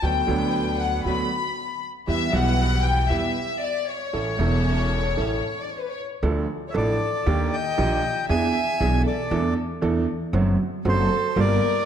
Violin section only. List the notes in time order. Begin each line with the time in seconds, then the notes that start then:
0.03 G5
0.80 F#5
1.05 B5
2.09 E5
2.35 F#5
2.85 G5
3.10 E5
3.61 D5
3.87 C#5
5.60 D5
5.70 C#5
5.80 B4
5.89 C#5
6.68 C#5
6.76 A4
7.52 D#5
8.29 E5
9.05 A4
10.86 A4
11.38 A#4